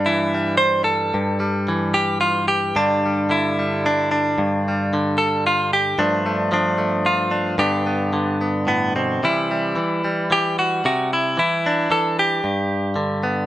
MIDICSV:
0, 0, Header, 1, 2, 480
1, 0, Start_track
1, 0, Tempo, 540541
1, 1007, Time_signature, 3, 2, 24, 8
1, 3895, Tempo, 531444
1, 6775, Tempo, 544465
1, 9655, Tempo, 529568
1, 12028, End_track
2, 0, Start_track
2, 0, Title_t, "Clean electric guitar"
2, 0, Program_c, 0, 27
2, 0, Note_on_c, 0, 43, 74
2, 0, Note_on_c, 0, 55, 47
2, 0, Note_on_c, 0, 62, 96
2, 52, Note_on_c, 0, 64, 90
2, 63, Note_on_c, 0, 52, 56
2, 301, Note_off_c, 0, 55, 0
2, 305, Note_on_c, 0, 55, 44
2, 507, Note_off_c, 0, 64, 0
2, 511, Note_on_c, 0, 72, 108
2, 535, Note_off_c, 0, 62, 0
2, 744, Note_off_c, 0, 72, 0
2, 748, Note_on_c, 0, 69, 81
2, 983, Note_off_c, 0, 52, 0
2, 1010, Note_off_c, 0, 43, 0
2, 1013, Note_on_c, 0, 43, 72
2, 1239, Note_off_c, 0, 55, 0
2, 1243, Note_on_c, 0, 55, 46
2, 1496, Note_on_c, 0, 52, 58
2, 1718, Note_off_c, 0, 69, 0
2, 1723, Note_on_c, 0, 67, 92
2, 1956, Note_off_c, 0, 67, 0
2, 1960, Note_on_c, 0, 65, 87
2, 2199, Note_off_c, 0, 65, 0
2, 2203, Note_on_c, 0, 67, 88
2, 2431, Note_off_c, 0, 52, 0
2, 2445, Note_off_c, 0, 43, 0
2, 2449, Note_on_c, 0, 43, 69
2, 2450, Note_off_c, 0, 67, 0
2, 2453, Note_on_c, 0, 62, 95
2, 2459, Note_on_c, 0, 50, 50
2, 2462, Note_off_c, 0, 55, 0
2, 2466, Note_on_c, 0, 55, 43
2, 2710, Note_off_c, 0, 55, 0
2, 2713, Note_on_c, 0, 55, 50
2, 2915, Note_off_c, 0, 50, 0
2, 2926, Note_on_c, 0, 50, 59
2, 2940, Note_on_c, 0, 64, 85
2, 3184, Note_off_c, 0, 55, 0
2, 3188, Note_on_c, 0, 55, 44
2, 3416, Note_off_c, 0, 62, 0
2, 3427, Note_on_c, 0, 62, 84
2, 3643, Note_off_c, 0, 62, 0
2, 3654, Note_on_c, 0, 62, 74
2, 3862, Note_off_c, 0, 43, 0
2, 3893, Note_on_c, 0, 43, 76
2, 3895, Note_off_c, 0, 64, 0
2, 4141, Note_off_c, 0, 55, 0
2, 4162, Note_on_c, 0, 55, 46
2, 4369, Note_off_c, 0, 50, 0
2, 4390, Note_on_c, 0, 50, 61
2, 4611, Note_on_c, 0, 69, 94
2, 4850, Note_off_c, 0, 62, 0
2, 4850, Note_off_c, 0, 69, 0
2, 4870, Note_on_c, 0, 65, 91
2, 5099, Note_off_c, 0, 65, 0
2, 5111, Note_on_c, 0, 67, 98
2, 5298, Note_off_c, 0, 43, 0
2, 5336, Note_off_c, 0, 50, 0
2, 5339, Note_off_c, 0, 67, 0
2, 5339, Note_on_c, 0, 43, 76
2, 5341, Note_off_c, 0, 55, 0
2, 5342, Note_on_c, 0, 62, 92
2, 5347, Note_on_c, 0, 53, 53
2, 5353, Note_on_c, 0, 57, 53
2, 5576, Note_off_c, 0, 57, 0
2, 5587, Note_on_c, 0, 57, 51
2, 5815, Note_off_c, 0, 62, 0
2, 5816, Note_off_c, 0, 53, 0
2, 5819, Note_on_c, 0, 53, 63
2, 5836, Note_on_c, 0, 62, 85
2, 6047, Note_off_c, 0, 57, 0
2, 6058, Note_on_c, 0, 57, 43
2, 6310, Note_on_c, 0, 65, 97
2, 6528, Note_off_c, 0, 62, 0
2, 6538, Note_on_c, 0, 62, 51
2, 6749, Note_off_c, 0, 62, 0
2, 6750, Note_off_c, 0, 57, 0
2, 6751, Note_off_c, 0, 53, 0
2, 6753, Note_off_c, 0, 43, 0
2, 6780, Note_on_c, 0, 43, 74
2, 6784, Note_off_c, 0, 65, 0
2, 6786, Note_on_c, 0, 50, 51
2, 6790, Note_on_c, 0, 59, 50
2, 6790, Note_on_c, 0, 67, 86
2, 6796, Note_on_c, 0, 62, 50
2, 7020, Note_off_c, 0, 59, 0
2, 7031, Note_on_c, 0, 59, 44
2, 7254, Note_off_c, 0, 50, 0
2, 7265, Note_on_c, 0, 50, 61
2, 7502, Note_off_c, 0, 59, 0
2, 7514, Note_on_c, 0, 59, 47
2, 7739, Note_off_c, 0, 59, 0
2, 7739, Note_on_c, 0, 45, 61
2, 7746, Note_off_c, 0, 62, 0
2, 7750, Note_on_c, 0, 59, 81
2, 7981, Note_off_c, 0, 45, 0
2, 7986, Note_off_c, 0, 59, 0
2, 7994, Note_on_c, 0, 47, 56
2, 7995, Note_on_c, 0, 60, 61
2, 8194, Note_off_c, 0, 43, 0
2, 8226, Note_off_c, 0, 67, 0
2, 8227, Note_off_c, 0, 50, 0
2, 8227, Note_off_c, 0, 60, 0
2, 8229, Note_off_c, 0, 47, 0
2, 8236, Note_on_c, 0, 48, 69
2, 8240, Note_on_c, 0, 52, 43
2, 8246, Note_on_c, 0, 55, 45
2, 8250, Note_on_c, 0, 64, 81
2, 8478, Note_off_c, 0, 55, 0
2, 8482, Note_on_c, 0, 55, 44
2, 8697, Note_off_c, 0, 52, 0
2, 8700, Note_on_c, 0, 52, 50
2, 8708, Note_off_c, 0, 48, 0
2, 8949, Note_off_c, 0, 55, 0
2, 8953, Note_on_c, 0, 55, 40
2, 9172, Note_off_c, 0, 52, 0
2, 9183, Note_on_c, 0, 52, 55
2, 9195, Note_off_c, 0, 64, 0
2, 9198, Note_on_c, 0, 67, 91
2, 9428, Note_off_c, 0, 67, 0
2, 9432, Note_on_c, 0, 66, 78
2, 9629, Note_off_c, 0, 52, 0
2, 9655, Note_off_c, 0, 66, 0
2, 9665, Note_on_c, 0, 48, 76
2, 9669, Note_on_c, 0, 66, 81
2, 9901, Note_off_c, 0, 66, 0
2, 9918, Note_on_c, 0, 64, 73
2, 10136, Note_on_c, 0, 52, 56
2, 10143, Note_off_c, 0, 48, 0
2, 10143, Note_off_c, 0, 64, 0
2, 10154, Note_on_c, 0, 64, 73
2, 10400, Note_on_c, 0, 62, 70
2, 10607, Note_off_c, 0, 52, 0
2, 10618, Note_on_c, 0, 52, 57
2, 10624, Note_off_c, 0, 64, 0
2, 10628, Note_on_c, 0, 69, 89
2, 10863, Note_off_c, 0, 69, 0
2, 10880, Note_on_c, 0, 67, 84
2, 11068, Note_off_c, 0, 52, 0
2, 11103, Note_on_c, 0, 43, 63
2, 11107, Note_off_c, 0, 62, 0
2, 11572, Note_on_c, 0, 50, 53
2, 11820, Note_off_c, 0, 55, 0
2, 11824, Note_on_c, 0, 59, 44
2, 12028, Note_off_c, 0, 43, 0
2, 12028, Note_off_c, 0, 50, 0
2, 12028, Note_off_c, 0, 59, 0
2, 12028, Note_off_c, 0, 67, 0
2, 12028, End_track
0, 0, End_of_file